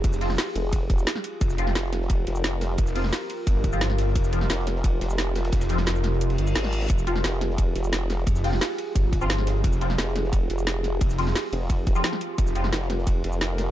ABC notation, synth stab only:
X:1
M:4/4
L:1/16
Q:1/4=175
K:Fm
V:1 name="Synth stab"
z2 [F,CF] z12 z | z2 [F,CF]2 z12 | z2 [F,CF] z8 [F,CF]4- [F,CF]- | [F,CF]2 [F,CF]2 z12 |
z2 [F,CF] z12 z | z2 [F,CF]2 z12 | z2 [F,CF] z8 [F,CF]4- [F,CF]- | [F,CF]2 [F,CF]2 z12 |
z2 [F,CF] z8 [F,CF]4- [F,CF]- | [F,CF]2 [F,CF]2 z12 |]